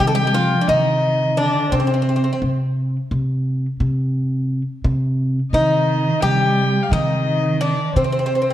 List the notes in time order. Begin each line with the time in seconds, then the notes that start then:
0.00 C3 G3 G5
0.07 A4 G5
0.13 G3 G4
0.27 G4
0.34 F3 F4
0.61 D4
0.67 C3 D#3 D#4 D#5
1.37 D3 D4 D5
1.71 C3 C#3 C4 C5
1.80 C4
1.87 C3 C4
1.94 C4
2.02 C4
2.09 C4
2.16 C4
2.24 C4
2.33 C4
2.42 C3
3.11 C3
3.80 C3
4.84 C3
5.52 C3 D#3 D#4 D#5
6.20 C3 G3 G4 G5
6.83 F5
6.91 C3 D#3 D#4 D#5
7.61 D4 D5
7.96 C3 C4 C5
8.04 C4
8.12 C4
8.19 C4
8.26 C4
8.35 C4
8.42 C4
8.50 C4